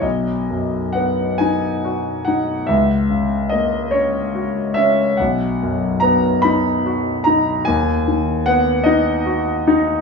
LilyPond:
\new Staff \with { instrumentName = "Grand piano" } { \time 12/8 \key b \major \tempo 4. = 48 << { dis''4 fis''8 gis''4 fis''8 e''4 dis''8 cis''4 e''8 | fis''4 ais''8 b''4 ais''8 gis''4 fis''8 dis''4 r8 | } \\ { b,,8 fis,8 b8 dis'8 fis'8 dis'8 cis,8 cis8 ais8 cis'8 fis'8 cis'8 | b,,8 fis,8 b8 dis'8 fis'8 dis'8 dis,8 dis8 b8 dis'8 fis'8 dis'8 | } >> }